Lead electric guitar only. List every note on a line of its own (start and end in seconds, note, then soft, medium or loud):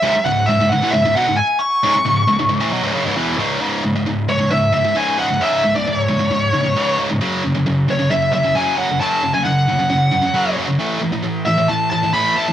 0.00 0.26 E5 loud
0.24 0.46 F#5 medium
0.46 0.68 E5 medium
0.69 0.93 F#5 loud
0.91 1.15 E5 loud
1.15 1.36 F#5 medium
1.37 1.60 G#5 loud
1.59 3.12 C#6 loud
4.29 4.51 C#5 medium
4.51 4.73 E5 loud
4.74 4.97 E5 medium
4.97 5.19 G#5 loud
5.19 5.42 F#5 loud
5.41 5.75 E5 medium
5.75 5.86 D5 medium
5.86 5.97 D5 medium
5.97 6.99 C#5 medium
7.91 8.11 C#5 medium
8.11 8.32 E5 medium
8.33 8.56 E5 medium
8.55 8.77 G#5 loud
8.78 9.00 F#5 medium
9.00 9.34 A5 medium
9.34 9.44 G#5 medium
9.44 10.53 F#5 medium
11.46 11.70 E5 medium
11.68 11.89 A5 loud
11.90 12.12 A5 medium
12.13 12.37 B5 loud
12.36 12.53 A5 medium